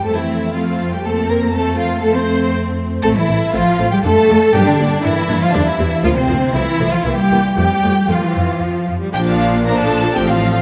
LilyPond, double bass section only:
\new Staff \with { instrumentName = "Double bass section" } { \clef bass \time 3/4 \key f \major \tempo 4 = 120 f,2.~ | f,2. | a,,8 a,,8 a,,8 a,,8 f,8 f,8 | g,8 g,8 g,8 g,8 e,8 e,8 |
d,8 d,8 c,8 c,8 c,8 c,8 | f,8 f,8 f,8 f,8 f,8 f,8 | \key bes \major bes,,2 a,,4 | }